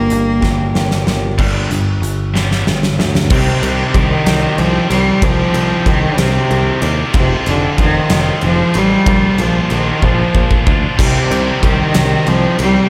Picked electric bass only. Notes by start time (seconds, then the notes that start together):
0.11 G1
0.43 G1
0.76 G1
1.07 G1
1.39 G1
1.71 G1
2.02 G1
2.67 G1
2.99 D2
3.30 C2
3.63 C2
3.94 C2
4.26 C2
4.58 C2
4.90 C2
5.23 C2
5.54 C2
5.86 C2
6.17 C2
6.51 C2
6.82 D#2
7.14 F1
7.47 F1
7.79 F1
8.11 F1
8.43 F1
8.75 A1
9.07 A#1
9.38 A#1
9.71 A#1
10.03 A#1
10.35 A#1
10.67 D2
10.99 C2
11.31 C2
11.63 C2
11.95 C2
12.27 C2
12.59 C2